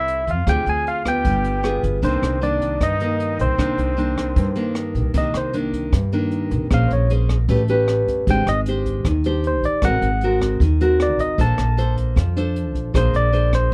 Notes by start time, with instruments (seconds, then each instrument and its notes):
Already playing: upright bass C2, nylon-string guitar C3 C4 E4 A4, muted trumpet E4, tine electric piano E5
0.08 closed hi-hat
0.27 upright bass F2, muted trumpet F4, tine electric piano F5, kick, closed hi-hat
0.47 upright bass D2, nylon-string guitar D3 C4 F4 G#4, muted trumpet G4, tine electric piano G5, kick, cross-stick, closed hi-hat
0.66 upright bass D2, muted trumpet G#4, tine electric piano G#5, closed hi-hat
0.87 muted trumpet F4, tine electric piano F5, closed hi-hat
1.05 nylon-string guitar B3 F4, muted trumpet G4, tine electric piano G5, kick, cross-stick, closed hi-hat
1.25 upright bass G1, nylon-string guitar G3, kick, closed hi-hat
1.44 closed hi-hat
1.63 nylon-string guitar B3 F4 G#4, cross-stick, closed hi-hat
1.83 upright bass G1, kick, closed hi-hat
2.02 upright bass C2, nylon-string guitar C3 D#3 A#3 D4, muted trumpet C4, tine electric piano C5, kick, closed hi-hat
2.22 upright bass C2, cross-stick, closed hi-hat
2.41 nylon-string guitar D#3 A#3 D4, muted trumpet D4, tine electric piano D5, closed hi-hat
2.61 kick, closed hi-hat
2.81 upright bass G2, nylon-string guitar G2, muted trumpet D#4, tine electric piano D#5, kick, cross-stick, closed hi-hat
3.00 nylon-string guitar D#3 A#3, closed hi-hat
3.20 closed hi-hat
3.39 upright bass C2, muted trumpet C4, tine electric piano C5, kick, closed hi-hat
3.58 upright bass C2, nylon-string guitar C3 D#3 A#3 D4, kick, cross-stick, closed hi-hat
3.78 upright bass C2, closed hi-hat
3.97 nylon-string guitar D#3 A#3 D4, closed hi-hat
4.17 kick, cross-stick, closed hi-hat
4.36 upright bass G2, nylon-string guitar G2, kick, closed hi-hat
4.55 nylon-string guitar D#3 A#3 D4, closed hi-hat
4.75 cross-stick, closed hi-hat
4.95 upright bass C2, kick, closed hi-hat
5.14 upright bass C2, nylon-string guitar C3 D#3 A#3 D4, tine electric piano D#5, kick, closed hi-hat
5.34 upright bass C2, tine electric piano C5, cross-stick, closed hi-hat
5.53 nylon-string guitar D#3 A#3 D4, closed hi-hat
5.73 kick, closed hi-hat
5.92 upright bass G2, nylon-string guitar G2, kick, cross-stick, closed hi-hat
6.12 nylon-string guitar D#3 A#3 D4, closed hi-hat
6.31 closed hi-hat
6.51 upright bass C2, kick, closed hi-hat
6.71 upright bass A#1, nylon-string guitar A#3 C#4 G#4 C5, tine electric piano F5, kick, cross-stick, closed hi-hat
6.88 upright bass A#1, tine electric piano C5, closed hi-hat
6.93 tine electric piano C#5
7.10 nylon-string guitar C#4 G#4 C5, closed hi-hat
7.29 kick, cross-stick, closed hi-hat
7.48 upright bass A1, nylon-string guitar A3 C#4 G4 B4, kick, closed hi-hat
7.68 nylon-string guitar C#4 G4 B4, closed hi-hat
7.88 cross-stick, closed hi-hat
8.08 upright bass G1, kick, closed hi-hat
8.27 upright bass G#1, nylon-string guitar G#3 D4 G4 C5, tine electric piano G5, kick, closed hi-hat
8.46 upright bass G#1, tine electric piano D#5, cross-stick, closed hi-hat
8.66 nylon-string guitar D4 G4 C5, closed hi-hat
8.85 kick, closed hi-hat
9.05 upright bass D#2, nylon-string guitar D#3, kick, cross-stick, closed hi-hat
9.24 nylon-string guitar D4 G4 C5, closed hi-hat
9.44 tine electric piano C5, closed hi-hat
9.63 upright bass G#1, tine electric piano D5, kick, closed hi-hat
9.82 upright bass G#1, nylon-string guitar G#3 C4 F#4 A#4, tine electric piano F#5, kick, cross-stick, closed hi-hat
10.02 upright bass G#1, closed hi-hat
10.21 nylon-string guitar C4 F#4 A#4, closed hi-hat
10.41 kick, cross-stick, closed hi-hat
10.60 upright bass D#2, nylon-string guitar D#3, kick, closed hi-hat
10.81 nylon-string guitar C4 F#4 A#4, closed hi-hat
11.00 tine electric piano D5, cross-stick, closed hi-hat
11.19 upright bass G#1, tine electric piano D#5, kick, closed hi-hat
11.38 upright bass A#1, nylon-string guitar A#3 D4 A4 C5, tine electric piano A5, kick, closed hi-hat
11.58 upright bass A#1, cross-stick, closed hi-hat
11.77 nylon-string guitar D4 A4 C5, closed hi-hat
11.97 kick, closed hi-hat
12.16 upright bass F2, nylon-string guitar F3, kick, cross-stick, closed hi-hat
12.37 nylon-string guitar D4 A4 C5, closed hi-hat
12.56 closed hi-hat
12.75 upright bass A#1, kick, closed hi-hat
12.94 upright bass A#1, nylon-string guitar A#3 D4 G#4 C5, tine electric piano C5, kick, cross-stick, closed hi-hat
13.14 upright bass A#1, tine electric piano D5, closed hi-hat
13.33 nylon-string guitar D4 G#4 C5, closed hi-hat
13.53 tine electric piano C5, kick, cross-stick, closed hi-hat